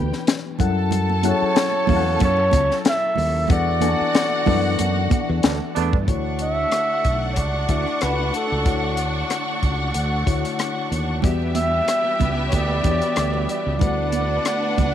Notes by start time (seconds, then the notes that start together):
Already playing: D2 E3 B3 D4 G4 B4 F5 G5
0.13 snare
0.27 snare, closed hi-hat
0.59 F#2 F#3 C#4 E4 A4 F#5 A5, kick, closed hi-hat, low conga
0.91 F#3 C#4 E4 A4, closed hi-hat, low conga
1.10 muted conga
1.23 F#3 C#4 E4 G#4 F#5, closed hi-hat, high conga
1.28 A4 C#5
1.42 muted fingered electric bass stroke
1.55 snare, closed hi-hat, muted conga
1.72 muted conga
1.87 E2 F#3 C#4 E4 A4 F5, kick, open hi-hat, high conga, low conga
1.96 F#5
2.19 F#2, kick, closed hi-hat, muted conga, high conga
2.23 C#5
2.37 muted conga
2.51 C#2, kick, closed hi-hat, high conga
2.71 snare
2.85 snare, closed hi-hat, muted conga
2.89 E5
3.15 D#2, open hi-hat, low conga
3.48 E2 E3 B3 D4 F#4 A4 D5 F#5, kick, closed hi-hat, low conga
3.81 E3 B3 D4 A4 G#5, closed hi-hat, high conga
3.88 A5
4.01 muted fingered electric bass stroke
4.13 snare, closed hi-hat, muted conga
4.30 muted conga
4.46 F#2 E3 B3 D4 A4 F#5, kick, open hi-hat, high conga, low conga
4.79 F#2, closed hi-hat, high conga
4.96 muted conga
5.10 muted fingered electric bass stroke, kick, closed hi-hat, high conga
5.30 E2
5.43 D2 A3 B3 D4, snare, closed hi-hat
5.61 muted conga
5.75 E2 A3 B3 D4, closed hi-hat
5.93 G2, kick
6.07 D2 D3 A3 D4 E4 F#4 C#5 F#5 C#6, kick, closed hi-hat
6.39 E5, closed hi-hat
6.72 cross-stick, closed hi-hat
7.05 B1, kick, closed hi-hat
7.33 C#5, closed hi-hat
7.37 C#2 D5, kick
7.69 D2 A3 D4 E4 F#4 E5, kick, closed hi-hat
7.86 cross-stick
8.01 C#2 B4, cross-stick, closed hi-hat
8.34 A4, closed hi-hat
8.52 C#2
8.66 D2 D3 A3 E4 F#4 C#5, kick, closed hi-hat
8.97 closed hi-hat
9.30 cross-stick, closed hi-hat
9.63 C#2, kick, closed hi-hat
9.94 D2, closed hi-hat
10.26 D2 D3 A3 E4 F#4 C#5, kick, closed hi-hat
10.45 cross-stick, closed hi-hat
10.59 cross-stick, closed hi-hat
10.92 D#2, closed hi-hat
11.22 E2 E3 G3 B3 D4 F#4 G4 D5 E5, kick, closed hi-hat, low conga
11.42 muted conga
11.55 E5, closed hi-hat, high conga
11.88 cross-stick, closed hi-hat, muted conga
12.04 muted conga
12.20 C#2, kick, closed hi-hat, high conga, low conga
12.48 C#5, closed hi-hat, high conga
12.53 D2 D5, kick
12.69 muted conga
12.84 E2 E3 B3 F#4 G4 C#5, kick, closed hi-hat, high conga
12.91 D5
13.02 closed hi-hat
13.16 D2, cross-stick, closed hi-hat
13.34 muted conga
13.49 D5, closed hi-hat
13.67 C#2
13.79 D2 D3 A3 B3 D4 E4 F#4 B4 D5 F#5, kick, closed hi-hat, muted conga, low conga
14.12 closed hi-hat, high conga
14.45 cross-stick, closed hi-hat
14.78 C#2, kick, closed hi-hat, high conga, low conga